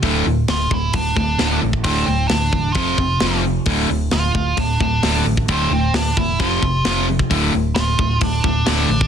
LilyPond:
<<
  \new Staff \with { instrumentName = "Lead electric guitar" } { \time 4/4 \key d \minor \tempo 4 = 132 r4 f'8 e'8 d'8 d'4 r8 | c'8 c'8 d'4 f'4. r8 | r4 f'4 d'8 d'4 r8 | c'8 c'8 d'8 e'8 f'4. r8 |
r4 f'4 d'8 d'8 d'4 | }
  \new Staff \with { instrumentName = "Overdriven electric guitar" } { \clef bass \time 4/4 \key d \minor <d, a, d>8 <d, a,>8 <d, a,>8 <d, a,>8 <d, a,>8 <d, a,>8 <d, a, d>8 <d, a,>8 | <d, a, d>8 <d, a,>8 <d, a,>8 <d, a,>8 <f, c f>8 <f, c>8 <f, c f>8 <f, c>8 | <d, a, d>8 <d, a,>8 <d, a,>8 <d, a,>8 <d, a,>8 <d, a,>8 <d, a, d>8 <d, a,>8 | <d, a, d>8 <d, a,>8 <d, a,>8 <d, a,>8 <f, c f>8 <f, c>8 <f, c f>8 <f, c>8 |
<d, a, d>8 <d, a,>8 <d, a,>8 <d, a,>8 <d, a,>8 <d, a,>8 <d, a, d>8 <d, a,>8 | }
  \new Staff \with { instrumentName = "Overdriven electric guitar" } { \clef bass \time 4/4 \key d \minor <d, a, d>8 <d, a,>8 <d, a,>8 <d, a,>8 <d, a,>8 <d, a,>8 <d, a, d>8 <d, a,>8 | <d, a, d>8 <d, a,>8 <d, a,>8 <d, a,>8 <f, c f>8 <f, c>8 <f, c f>8 <f, c>8 | <d, a, d>8 <d, a,>8 <d, a,>8 <d, a,>8 <d, a,>8 <d, a,>8 <d, a, d>8 <d, a,>8 | <d, a, d>8 <d, a,>8 <d, a,>8 <d, a,>8 <f, c f>8 <f, c>8 <f, c f>8 <f, c>8 |
<d, a, d>8 <d, a,>8 <d, a,>8 <d, a,>8 <d, a,>8 <d, a,>8 <d, a, d>8 <d, a,>8 | }
  \new Staff \with { instrumentName = "Fingered electric bass" } { \clef bass \time 4/4 \key d \minor d,,8 d,,8 d,,8 d,,8 d,,8 d,,8 d,,8 a,,8 | d,,8 d,,8 d,8 r8 f,,8 f,,8 f,,4 | d,,8 d,,8 d,,8 d,,8 d,,8 d,,8 d,,8 a,,8 | d,,8 d,,8 d,8 e,,8 f,,8 f,,8 f,,4 |
d,,8 d,,8 d,,8 d,,8 d,,8 d,,8 d,,8 a,,8 | }
  \new DrumStaff \with { instrumentName = "Drums" } \drummode { \time 4/4 <hho bd>4 <hho sn>8 bd8 <hho bd>8 bd8 <hho sn>8. bd16 | <hho bd>4 <hho sn>8 bd8 <hho bd>8 bd8 <hho sn>4 | <hho bd>4 <hho sn>8 bd8 <hho bd>8 bd8 <hho sn>8. bd16 | <hho bd>4 <hho sn>8 bd8 <hho bd>8 bd8 <hho sn>8. bd16 |
<hho bd>4 <hho sn>8 bd8 <hho bd>8 bd8 <hho sn>8. bd16 | }
>>